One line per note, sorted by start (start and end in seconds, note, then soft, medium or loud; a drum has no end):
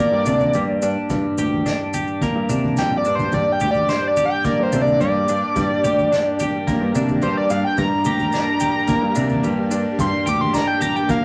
0.00 1.10 G2 medium
0.00 0.55 G3 medium
0.00 2.22 A#3 medium
0.00 0.27 D4 medium
0.00 1.38 G4 medium
0.00 0.89 D5 loud
0.12 0.25 G2 medium
0.26 0.51 C3 medium
0.26 0.83 D4 medium
0.26 floor tom medium
0.26 mid tom medium
0.26 maracas medium
0.40 floor tom medium
0.40 maracas soft
0.54 0.79 G2 medium
0.54 2.78 G3 medium
0.54 floor tom medium
0.54 maracas medium
0.82 0.95 G2 medium
0.82 1.66 D4 medium
0.82 maracas medium
1.09 1.23 G2 medium
1.09 3.33 G2 medium
1.09 kick loud
1.09 floor tom medium
1.09 maracas medium
1.37 1.63 D2 medium
1.37 1.94 G4 medium
1.37 floor tom medium
1.37 maracas medium
1.52 floor tom medium
1.66 2.50 D4 medium
1.66 kick medium
1.66 snare medium
1.66 maracas medium
1.93 3.61 G4 medium
1.93 floor tom medium
1.93 maracas medium
2.07 maracas soft
2.21 4.45 A#3 medium
2.21 kick loud
2.21 floor tom medium
2.21 maracas medium
2.36 2.48 G2 medium
2.49 2.75 C3 medium
2.49 3.05 D4 medium
2.49 floor tom medium
2.49 mid tom medium
2.49 maracas medium
2.62 floor tom medium
2.77 3.03 F2 medium
2.77 5.00 G3 medium
2.77 2.96 G5 loud
2.77 snare medium
2.77 floor tom medium
2.77 maracas medium
2.90 mid tom medium
2.97 3.15 D5 medium
3.05 3.31 G2 medium
3.05 3.88 D4 medium
3.05 maracas medium
3.15 3.33 C5 medium
3.15 floor tom medium
3.15 mid tom medium
3.15 maracas soft
3.32 3.45 G2 medium
3.32 5.56 G2 medium
3.32 11.25 G3 medium
3.32 11.25 A#3 medium
3.32 11.25 D4 medium
3.32 11.25 G4 medium
3.32 11.25 A#4 medium
3.32 3.52 D5 medium
3.32 kick loud
3.32 floor tom medium
3.32 maracas medium
3.52 3.70 G5 medium
3.60 3.86 D2 medium
3.60 4.17 G4 medium
3.60 floor tom medium
3.60 mid tom medium
3.60 maracas medium
3.71 3.89 D5 medium
3.71 floor tom medium
3.71 maracas soft
3.89 4.72 D4 medium
3.89 4.07 C5 medium
3.89 snare medium
3.89 maracas medium
4.08 4.25 D5 medium
4.16 5.84 G4 medium
4.16 floor tom medium
4.16 maracas medium
4.26 4.44 G5 loud
4.45 6.67 A#3 medium
4.45 4.62 D5 medium
4.45 kick loud
4.45 floor tom medium
4.45 maracas medium
4.60 4.72 G2 medium
4.60 4.81 C5 medium
4.72 4.98 C3 medium
4.72 5.29 D4 medium
4.72 floor tom medium
4.72 mid tom medium
4.72 maracas medium
4.82 5.00 D5 medium
4.86 floor tom medium
4.86 maracas soft
5.00 5.25 G2 medium
5.00 7.22 G3 medium
5.00 6.63 D5 loud
5.00 floor tom medium
5.00 maracas medium
5.28 5.41 G2 medium
5.28 6.12 D4 medium
5.28 maracas medium
5.56 5.68 G2 loud
5.56 7.79 G2 medium
5.56 kick loud
5.56 floor tom medium
5.56 maracas medium
5.84 6.09 D2 medium
5.84 6.40 G4 medium
5.84 floor tom medium
5.84 mid tom medium
5.84 maracas medium
5.98 floor tom medium
5.98 maracas soft
6.12 6.95 D4 medium
6.12 snare medium
6.12 maracas medium
6.39 8.06 G4 medium
6.39 floor tom medium
6.39 maracas medium
6.67 8.87 A#3 medium
6.67 kick loud
6.67 floor tom medium
6.67 maracas medium
6.81 6.93 G2 medium
6.95 7.19 C3 medium
6.95 7.50 D4 medium
6.95 floor tom medium
6.95 mid tom medium
6.95 maracas medium
7.08 floor tom medium
7.08 maracas soft
7.22 7.47 G2 medium
7.22 9.43 G3 medium
7.22 7.36 C5 loud
7.22 floor tom medium
7.22 maracas medium
7.37 7.50 D5 medium
7.50 7.62 G2 loud
7.50 8.33 D4 medium
7.50 7.63 F5 medium
7.50 maracas medium
7.65 7.77 G5 medium
7.77 7.90 G2 loud
7.77 9.98 G2 medium
7.77 8.05 A#5 loud
7.77 kick medium
7.77 floor tom medium
7.77 maracas medium
8.05 8.30 D2 medium
8.05 8.60 G4 medium
8.05 9.68 A#5 loud
8.05 floor tom medium
8.05 mid tom medium
8.05 maracas medium
8.19 floor tom medium
8.19 maracas soft
8.32 9.15 D4 medium
8.32 snare medium
8.32 maracas medium
8.60 10.26 G4 medium
8.60 floor tom medium
8.60 maracas medium
8.88 11.08 A#3 medium
8.88 kick loud
8.88 floor tom medium
8.88 maracas medium
9.02 9.14 G2 medium
9.15 9.41 C3 medium
9.15 9.71 D4 medium
9.15 floor tom medium
9.15 mid tom medium
9.15 maracas loud
9.29 floor tom medium
9.29 maracas soft
9.44 9.68 G2 medium
9.44 11.25 G3 medium
9.44 floor tom medium
9.44 maracas medium
9.71 9.84 G2 loud
9.71 10.53 D4 medium
9.71 maracas loud
9.99 10.11 G2 loud
9.99 11.25 G2 medium
9.99 10.27 C6 loud
9.99 kick loud
9.99 floor tom medium
9.99 maracas medium
10.26 10.51 D2 medium
10.26 10.80 G4 medium
10.26 10.41 D6 loud
10.26 floor tom medium
10.26 maracas medium
10.41 10.54 C6 medium
10.41 floor tom medium
10.53 11.25 D4 medium
10.53 10.67 A#5 medium
10.53 kick medium
10.53 snare medium
10.53 maracas medium
10.67 10.81 G5 medium
10.81 11.25 G4 medium
10.81 10.95 A#5 loud
10.81 floor tom medium
10.81 maracas loud
10.96 11.09 G5 medium
10.96 maracas soft
11.09 11.25 A#3 medium
11.09 11.23 F5 medium
11.09 kick loud
11.09 floor tom medium
11.09 maracas medium